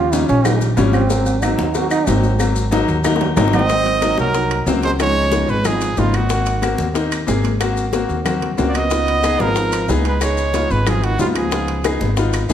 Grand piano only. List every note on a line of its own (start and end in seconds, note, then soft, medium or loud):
0.12 0.35 F3 medium
0.12 0.36 G3 medium
0.12 0.36 C#4 loud
0.45 0.68 F3 medium
0.45 0.68 G3 medium
0.45 0.68 D#4 medium
0.77 1.00 F3 loud
0.77 1.00 G3 loud
0.77 1.01 C#4 loud
1.10 1.33 F#3 medium
1.10 1.33 A#3 medium
1.10 1.33 C4 medium
1.42 1.65 F#3 medium
1.42 1.65 A#3 medium
1.42 1.66 C4 medium
1.74 1.97 F#3 medium
1.74 1.98 A#3 medium
1.74 1.98 C4 medium
2.07 2.30 F#3 medium
2.07 2.30 A#3 medium
2.07 2.30 D#4 loud
2.39 2.62 F#3 medium
2.39 2.62 A#3 medium
2.39 2.63 C4 medium
2.71 2.95 F#3 loud
2.71 2.95 A#3 medium
2.71 2.95 D#4 loud
3.04 3.27 F#3 loud
3.04 3.27 A#3 medium
3.04 3.28 D#4 loud
3.36 3.60 F#3 loud
3.36 3.60 A#3 loud
3.36 3.60 D#4 loud
3.69 3.92 F#3 medium
3.69 3.93 A#3 medium
3.69 3.93 C4 medium
4.02 4.25 F#3 loud
4.02 4.25 A#3 medium
4.02 4.25 D#4 loud
4.34 4.57 F#3 medium
4.34 4.58 A#3 medium
4.34 4.58 D#4 medium
4.67 4.90 F#3 loud
4.67 4.90 A#3 medium
4.67 4.90 C4 loud
4.99 5.22 F3 medium
4.99 5.23 B3 medium
4.99 5.23 D#4 medium
5.32 5.55 F3 medium
5.32 5.55 B3 medium
5.32 5.55 D#4 medium
5.64 5.88 F3 medium
5.64 5.88 B3 medium
5.64 5.88 D#4 medium
5.97 6.20 F3 medium
5.97 6.20 B3 medium
5.97 6.21 D#4 loud
6.30 6.53 A#3 medium
6.30 6.53 C4 medium
6.30 6.54 F#4 medium
6.62 6.85 A#3 loud
6.62 6.86 C4 medium
6.62 6.86 F#4 loud
6.94 7.18 A#3 medium
6.94 7.18 C4 medium
6.94 7.18 D#4 loud
7.27 7.50 A#3 medium
7.27 7.50 C4 medium
7.27 7.51 G#4 loud
7.60 7.83 A#3 medium
7.60 7.83 C4 medium
7.60 7.84 F#4 loud
7.93 8.16 A#3 medium
7.93 8.16 C4 medium
7.93 8.16 F#4 loud
8.25 8.48 A#3 medium
8.25 8.49 C4 medium
8.25 8.49 F#4 loud
8.58 8.81 A#3 loud
8.58 8.81 C4 medium
8.58 8.82 F#4 loud
8.90 9.13 B3 medium
8.90 9.14 D#4 medium
8.90 9.14 F4 medium
9.23 9.46 B3 loud
9.23 9.47 D#4 medium
9.23 9.47 G#4 loud
9.56 9.79 B3 medium
9.56 9.79 D#4 medium
9.56 9.80 F4 medium
9.89 10.12 B3 loud
9.89 10.12 D#4 medium
9.89 10.12 G#4 loud
10.21 10.44 B3 medium
10.21 10.45 D#4 medium
10.21 10.45 G#4 medium
10.54 10.77 B3 medium
10.54 10.77 D#4 medium
10.54 10.78 F4 medium
10.86 11.09 B3 medium
10.86 11.10 D#4 medium
10.86 11.10 F4 medium
11.19 11.42 B3 medium
11.19 11.42 D#4 medium
11.19 11.43 F4 loud
11.51 11.75 B3 medium
11.51 11.75 D#4 medium
11.51 11.76 F4 medium
11.84 12.08 B3 medium
11.84 12.08 D#4 medium
11.84 12.08 G#4 loud
12.17 12.40 B3 medium
12.17 12.41 D#4 medium
12.17 12.41 F4 loud
12.49 12.53 B3 loud
12.49 12.53 D#4 loud